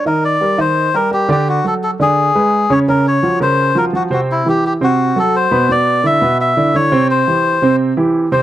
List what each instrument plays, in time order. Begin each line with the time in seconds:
0.05 grand piano D#3 D#4 D#5, melodica A#4
0.25 melodica D5
0.41 grand piano G3 G4 A#4
0.58 grand piano D#3 D#4 D#5, melodica C5
0.94 grand piano G3 G4 A#4, melodica A#4
1.11 grand piano G3 G4 A#4, melodica G4
1.29 grand piano D3 D4 D5, melodica G4
1.49 melodica F#4
1.64 grand piano F#3 F#4 A4, melodica A4
1.83 melodica A4
2.00 grand piano D3 D4 D5, melodica G#4
2.35 grand piano G#3 G#4 B4
2.70 grand piano C#3 C#4 C#5, melodica C#5
2.88 grand piano C#3 C#4 C#5, melodica A#4
3.08 melodica C#5
3.23 grand piano F3 F4 F#4
3.40 grand piano C#3 C#4 A#4, melodica C5
3.75 grand piano F3 F4 F#4, melodica A#4
3.93 grand piano F3 F4 F#4, melodica F#4
4.10 grand piano C3 C4 C5, melodica F#4
4.32 melodica E4
4.46 grand piano E3 E4 G4, melodica G4
4.66 melodica G4
4.81 grand piano C3 C4 C5, melodica F#4
5.16 grand piano F#3 F#4 A4, melodica A4
5.36 melodica C5
5.51 grand piano B2 B3 B4
5.69 grand piano B2 B3 B4, melodica D5
6.04 grand piano D3 D4 E4, melodica E5
6.21 grand piano B2 B3 B4
6.41 melodica E5
6.57 grand piano D3 D4 E4
6.74 grand piano D3 D4 E4, melodica C#5
6.92 grand piano C3 C4 C5
7.11 melodica C5
7.27 grand piano E3 E4 G4
7.62 grand piano C3 C4 C5
7.97 grand piano E3 E4 G4
8.32 grand piano C3 C4 C5, melodica C5